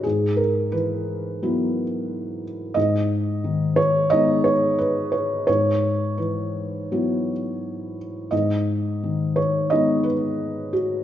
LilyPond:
<<
  \new Staff \with { instrumentName = "Felt piano" } { \time 4/4 \key gis \minor \tempo 4 = 88 gis'8 ais'8 b'2~ b'8 r8 | dis''4. cis''8 dis''8 cis''8 b'8 cis''8 | cis''4 b'2~ b'8 r8 | dis''4. cis''8 dis''8 b'4 fis'8 | }
  \new Staff \with { instrumentName = "Felt piano" } { \clef bass \time 4/4 \key gis \minor gis,4 e4 <fis b e'>2 | gis,4 dis4 <gis b dis'>2 | gis,4 e4 <fis b e'>2 | gis,4 dis4 <gis b dis'>2 | }
>>